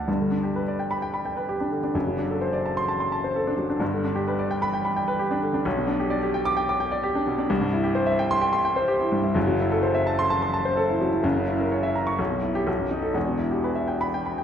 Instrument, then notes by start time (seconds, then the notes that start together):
grand piano
Already playing: D4 A5
0.07 G1 G2
0.20 D3
0.31 D4
0.43 G4
0.56 B4
0.68 D5
0.79 G5
0.91 B5
1.02 G5
1.14 B5
1.25 G5
1.37 B4
1.49 G4
1.60 D4
1.72 D3
1.83 D4
1.94 F#1 F#2
2.07 F#3
2.18 D4
2.30 A4
2.41 C5
2.53 D5
2.66 A5
2.77 C6
2.88 A5
3.00 C6
3.12 A5
3.24 C5
3.36 A4
3.47 D4
3.58 F#3
3.70 D4
3.79 G1 G2
3.93 D3
4.05 D4
4.15 G4
4.28 B4
4.39 D5
4.51 G5
4.62 B5
4.74 G5
4.85 B5
4.96 G5
5.08 B4
5.19 G4
5.31 D4
5.43 D3
5.54 D4
5.65 B1
5.77 B2
5.87 D4
6.00 G4
6.10 D5
6.23 G4
6.34 G5
6.45 D6
6.57 G5
6.69 D6
6.80 G5
6.92 D5
7.03 G4
7.15 D4
7.27 B2
7.38 D4
7.50 C2
7.61 G2
7.73 E4
7.84 G4
7.95 C5
8.06 E5
8.19 G5
8.31 C6
8.41 G5
8.53 C6
8.65 G5
8.76 C5
8.88 G4
9.00 E4
9.12 G2
9.24 E4
9.34 F#1 F#2
9.47 F#3
9.60 E4
9.72 A4
9.83 C5
9.94 E5
10.07 A5
10.19 C6
10.30 A5
10.42 C6
10.54 A5
10.65 C5
10.77 A4
10.89 E4
11.01 F#3
11.12 E4
11.23 F#1 F#2
11.36 C#3
11.48 E4
11.60 A#4
11.72 C#5
11.83 E5
11.95 A#5
12.07 C#6
12.19 B1
12.30 B2
12.43 E4
12.55 G4
12.67 B1
12.79 F#2
12.91 D#4
13.03 A4
13.13 E1 E2
13.27 B2
13.39 E4
13.51 G4
13.64 B4
13.75 E5
13.88 G5
14.01 B5
14.14 G5
14.26 B5
14.38 G5